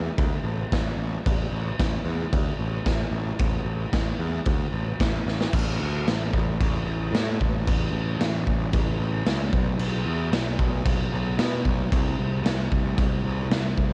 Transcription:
0.18 D2, kick, crash
0.43 A1
0.72 A1, kick, snare, crash
0.97 A1
1.26 A1, kick, crash
1.51 A1
1.79 A1, kick, snare, crash
2.05 E2
2.33 D2, kick, crash
2.59 A1
2.86 A1, kick, snare, crash
3.11 A1
3.39 A1, kick, crash
3.65 A1
3.93 A1, kick, snare, crash
4.19 E2
4.45 D2, kick, crash
4.72 A1
5.00 A1, kick, snare, crash
5.26 A1, snare
5.41 snare
5.53 A1, kick, crash
5.79 D2
6.08 A1, snare, crash
6.33 A1, kick
6.60 A1, kick, crash
6.86 A1
7.12 A2, snare, crash
7.40 A1, kick
7.67 A1, kick, crash
7.91 A1
8.19 A1, snare, crash
8.47 A1, kick
8.73 A1, kick, crash
8.99 A1
9.25 C#2, snare, crash
9.52 B1, kick
9.79 B1, crash
10.05 E2
10.32 B1, snare, crash
10.59 B1, kick
10.85 B1, kick, crash
11.13 B1
11.38 B2, snare, crash
11.65 B1, kick
11.92 C2, kick, crash
12.19 C2
12.43 C2, snare, crash
12.71 C2, kick
12.98 C2, kick, crash
13.24 C2
13.51 C2, snare, crash
13.77 C2, kick

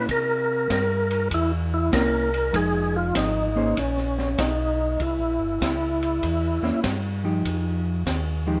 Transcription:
0.09 C3 A#4, kick, ride
0.70 G2 A#4, kick, snare, hi-hat pedal, ride
1.11 ride
1.31 E2 E4, kick, ride
1.74 E4
1.92 C2 A#3 C#4 E4 A#4, kick, snare, hi-hat pedal, ride
2.34 ride
2.53 F1 F3 G#3 D#4 G#4, kick, ride
2.96 F4
3.15 G#1 D#4, kick, snare, hi-hat pedal, ride
3.56 A#3 C#4 G#4 C5
3.77 A#1 C#4, kick, ride
3.97 snare
4.18 snare
4.38 B1 D#4, kick, snare, hi-hat pedal, ride
5.00 C2 E4, kick, ride
5.19 A#1
5.39 G1
5.61 C#2, kick, snare, hi-hat pedal, ride
6.02 ride
6.23 E2, kick, ride
6.62 E2 A#3 C#4 E4, snare
6.83 G2, kick, snare, hi-hat pedal, ride
7.24 F3 D#4 G4
7.45 F2, kick, ride
8.06 D#2, kick, snare, hi-hat pedal, ride
8.47 F3 G#3 D#4 G4

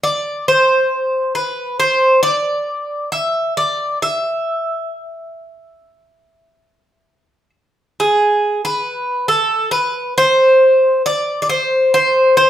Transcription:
0.03 D5
0.48 C5
1.35 B4
1.80 C5
2.23 D5
3.12 E5
3.57 D5
4.02 E5
8.00 G#4
8.65 B4
9.28 A4
9.71 B4
10.18 C5
11.06 D5
11.42 D5
11.49 C5
11.94 C5
12.37 C5

